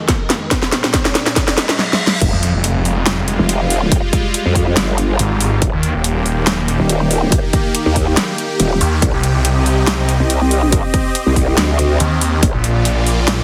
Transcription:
0.00 0.49 F2 medium
0.00 0.49 D#3 medium
0.00 0.49 G#3 medium
0.00 riser medium
0.09 kick loud
0.09 snare medium
0.09 closed hi-hat medium
0.30 snare medium
0.30 closed hi-hat medium
0.51 1.78 A#2 medium
0.51 1.77 G3 medium
0.51 1.77 D4 medium
0.51 kick loud
0.51 snare medium
0.51 closed hi-hat medium
0.63 snare medium
0.72 snare medium
0.72 closed hi-hat soft
0.84 snare medium
0.94 kick loud
0.94 snare medium
0.94 closed hi-hat medium
1.05 snare medium
1.15 snare loud
1.15 closed hi-hat medium
1.26 snare medium
1.36 kick loud
1.36 snare loud
1.36 closed hi-hat medium
1.36 reverse cymbal medium
1.48 snare medium
1.58 snare loud
1.58 closed hi-hat medium
1.69 snare medium
1.79 snare medium
1.93 snare medium
2.07 snare loud
2.21 2.31 F1 medium
2.21 5.58 G3 medium
2.21 5.58 G#3 medium
2.21 5.58 F4 medium
2.21 kick loud
2.21 closed hi-hat medium
2.21 crash loud
2.21 impact medium
2.33 2.52 F2 loud
2.43 closed hi-hat medium
2.54 3.37 F1 loud
2.64 closed hi-hat medium
2.85 open hi-hat medium
3.06 snare loud
3.06 closed hi-hat medium
3.28 closed hi-hat medium
3.39 4.01 F1 loud
3.49 closed hi-hat medium
3.70 open hi-hat loud
3.92 kick loud
3.92 closed hi-hat medium
4.13 kick loud
4.13 closed hi-hat medium
4.34 closed hi-hat medium
4.46 4.75 F2 loud
4.55 kick medium
4.55 open hi-hat medium
4.77 5.18 G1 loud
4.77 snare loud
4.77 closed hi-hat medium
4.98 closed hi-hat medium
5.19 5.60 G#1 medium
5.19 closed hi-hat medium
5.41 open hi-hat loud
5.62 5.71 D#1 loud
5.62 8.99 D#3 medium
5.62 8.99 A#3 medium
5.62 12.39 G4 loud
5.62 kick loud
5.62 closed hi-hat medium
5.73 5.93 D#2 medium
5.83 closed hi-hat medium
5.95 6.78 D#1 medium
6.04 closed hi-hat medium
6.26 open hi-hat medium
6.47 snare loud
6.47 closed hi-hat medium
6.68 closed hi-hat medium
6.80 7.42 D#1 loud
6.89 closed hi-hat medium
7.11 open hi-hat medium
7.32 kick loud
7.32 closed hi-hat medium
7.53 kick loud
7.53 closed hi-hat medium
7.75 closed hi-hat medium
7.86 8.16 D#2 loud
7.96 kick medium
7.96 open hi-hat medium
8.17 snare loud
8.17 closed hi-hat medium
8.38 closed hi-hat medium
8.60 8.79 D#1 loud
8.60 closed hi-hat medium
8.81 9.01 D#2 loud
8.81 open hi-hat medium
9.02 9.12 C2 medium
9.02 12.39 C4 medium
9.02 12.39 D#5 medium
9.02 kick loud
9.02 closed hi-hat medium
9.14 9.33 C2 loud
9.23 closed hi-hat medium
9.35 10.18 C2 loud
9.45 closed hi-hat medium
9.66 open hi-hat medium
9.87 snare loud
9.87 closed hi-hat medium
10.09 closed hi-hat medium
10.20 10.82 C2 loud
10.30 closed hi-hat medium
10.51 open hi-hat medium
10.72 kick loud
10.72 closed hi-hat medium
10.94 kick loud
10.94 closed hi-hat medium
11.15 closed hi-hat medium
11.26 11.56 C2 loud
11.36 kick medium
11.36 open hi-hat medium
11.58 11.99 D2 loud
11.58 snare loud
11.58 closed hi-hat medium
11.79 closed hi-hat soft
12.00 12.41 D#2 medium
12.00 closed hi-hat medium
12.21 open hi-hat medium
12.43 12.52 A#1 loud
12.43 13.44 A#3 medium
12.43 13.44 F4 medium
12.43 13.44 D5 loud
12.43 kick loud
12.43 closed hi-hat medium
12.54 12.74 A#1 medium
12.64 closed hi-hat medium
12.75 13.44 A#1 loud
12.85 closed hi-hat medium
13.07 open hi-hat medium
13.28 snare loud
13.28 closed hi-hat medium

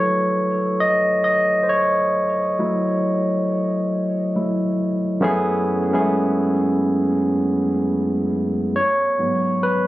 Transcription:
0.00 2.59 F#3 medium
0.00 2.59 A3 medium
0.00 2.60 E4 medium
0.00 5.24 A4 medium
0.00 5.24 B4 medium
0.00 0.83 C#5 medium
0.80 1.22 D#5 loud
1.24 1.42 D#5 loud
1.63 1.69 C5 medium
1.69 2.53 C#5 medium
2.59 4.34 F#3 medium
2.59 4.34 A3 medium
2.59 4.35 E4 medium
4.35 4.75 F#3 soft
4.35 4.75 A3 soft
4.35 4.75 E4 medium
5.20 5.76 F#2 loud
5.20 5.77 A3 medium
5.20 5.77 B3 loud
5.20 5.77 C#4 loud
5.20 5.77 E4 loud
5.20 5.78 G#4 loud
5.91 7.31 F#2 medium
5.91 5.98 G#3 medium
5.91 7.32 B3 medium
5.91 7.32 C#4 medium
5.91 7.33 E4 medium
5.91 7.33 G#4 medium
5.99 7.35 A3 medium
8.76 9.66 C#5 loud
9.19 9.81 G#2 soft
9.19 9.82 F#3 soft
9.19 9.82 B3 medium
9.63 9.87 B4 medium

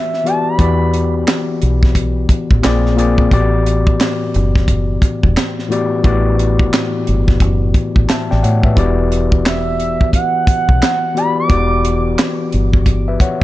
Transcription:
0.00 0.28 E5 medium
0.14 snare soft
0.24 0.55 E3 medium
0.24 0.56 B3 medium
0.24 0.56 F#4 medium
0.24 0.57 G4 medium
0.24 0.57 D5 medium
0.24 0.50 A5 medium
0.24 closed hi-hat medium
0.48 1.15 B5 medium
0.58 1.23 E2 medium
0.58 1.83 E3 medium
0.58 1.83 B3 medium
0.58 1.83 F#4 medium
0.58 1.84 G4 medium
0.58 1.84 D5 medium
0.58 kick medium
0.58 closed hi-hat medium
0.94 closed hi-hat medium
1.28 snare loud
1.28 clap medium
1.28 closed hi-hat medium
1.62 2.26 B1 medium
1.62 closed hi-hat soft
1.83 kick medium
1.83 snare soft
1.95 kick medium
1.95 closed hi-hat medium
2.29 muted fingered electric bass stroke soft
2.29 kick medium
2.29 closed hi-hat medium
2.51 2.63 A1 medium
2.51 kick medium
2.62 3.29 A#1 medium
2.62 2.94 A#2 medium
2.62 2.94 A#3 medium
2.62 2.95 C4 medium
2.62 2.95 G#4 medium
2.62 2.96 D5 medium
2.62 snare medium
2.62 clap medium
2.62 closed hi-hat medium
2.86 snare soft
2.96 3.28 A#2 medium
2.96 3.28 A#3 medium
2.96 3.29 C4 medium
2.96 3.29 G#4 medium
2.96 3.29 D5 medium
2.96 closed hi-hat medium
3.18 kick medium
3.30 3.96 A1 medium
3.30 4.55 A2 medium
3.30 4.55 E3 medium
3.30 4.56 B3 medium
3.30 4.56 F#4 medium
3.30 4.56 G4 medium
3.30 4.57 D5 medium
3.30 kick medium
3.30 closed hi-hat medium
3.66 closed hi-hat medium
3.87 kick medium
4.01 snare loud
4.01 clap medium
4.01 closed hi-hat medium
4.34 4.99 F#1 medium
4.34 closed hi-hat soft
4.55 kick medium
4.55 snare soft
4.68 kick medium
4.68 closed hi-hat medium
5.02 muted fingered electric bass stroke soft
5.02 kick medium
5.02 closed hi-hat medium
5.23 5.35 E1 medium
5.23 kick medium
5.37 snare medium
5.37 clap medium
5.37 closed hi-hat medium
5.59 snare soft
5.69 6.01 A2 medium
5.69 6.01 E3 medium
5.69 6.01 B3 medium
5.69 6.02 F#4 medium
5.69 6.02 G4 medium
5.69 6.02 D5 medium
5.69 closed hi-hat medium
6.03 6.69 A1 medium
6.03 7.28 A2 medium
6.03 7.28 E3 medium
6.03 7.28 B3 medium
6.03 7.29 F#4 medium
6.03 7.29 G4 medium
6.03 7.29 D5 medium
6.03 kick medium
6.03 closed hi-hat medium
6.39 closed hi-hat medium
6.59 kick medium
6.74 snare loud
6.74 clap medium
6.74 closed hi-hat medium
7.07 7.39 G1 medium
7.07 closed hi-hat medium
7.28 kick medium
7.28 snare soft
7.40 7.72 F#1 medium
7.40 kick medium
7.40 closed hi-hat medium
7.74 kick medium
7.74 closed hi-hat medium
7.96 8.08 A1 medium
7.96 kick medium
8.09 8.30 E5 soft
8.09 8.29 A5 medium
8.09 muted fingered electric bass stroke soft
8.09 snare medium
8.09 clap medium
8.09 closed hi-hat medium
8.31 8.43 A1 medium
8.31 8.43 D5 medium
8.31 8.42 G5 medium
8.31 snare soft
8.43 8.75 A2 medium
8.43 8.64 C#5 soft
8.43 8.63 F#5 medium
8.43 closed hi-hat medium
8.63 8.97 B4 soft
8.63 8.97 E5 medium
8.63 kick medium
8.75 9.97 E1 medium
8.75 10.00 E3 medium
8.75 10.01 B3 medium
8.75 10.01 F#4 medium
8.75 10.02 G4 medium
8.75 10.02 D5 medium
8.75 kick medium
8.75 closed hi-hat medium
9.12 closed hi-hat medium
9.32 kick medium
9.46 10.10 E5 medium
9.46 snare loud
9.46 clap medium
9.46 closed hi-hat medium
9.80 closed hi-hat soft
10.01 kick medium
10.13 11.19 F#5 medium
10.13 kick medium
10.13 closed hi-hat medium
10.47 muted fingered electric bass stroke soft
10.47 kick medium
10.47 closed hi-hat medium
10.69 10.81 B1 medium
10.69 kick medium
10.83 snare medium
10.83 clap medium
10.83 closed hi-hat medium
11.14 11.46 E3 medium
11.14 11.46 B3 medium
11.14 11.47 F#4 soft
11.14 11.47 G4 medium
11.14 11.48 D5 medium
11.14 11.38 B5 medium
11.14 closed hi-hat medium
11.39 12.02 D6 medium
11.48 12.14 E1 medium
11.48 12.73 E3 medium
11.48 12.74 B3 medium
11.48 12.74 F#4 medium
11.48 12.75 G4 medium
11.48 12.75 D5 medium
11.48 kick medium
11.48 closed hi-hat medium
11.85 closed hi-hat medium
12.19 snare loud
12.19 clap medium
12.19 closed hi-hat medium
12.52 13.17 G1 medium
12.52 closed hi-hat soft
12.73 kick medium
12.86 kick medium
12.86 closed hi-hat medium
13.08 13.20 B4 soft
13.08 13.20 E5 medium
13.20 13.41 C#5 medium
13.20 13.41 F#5 medium
13.20 muted fingered electric bass stroke soft
13.20 kick medium
13.20 closed hi-hat medium

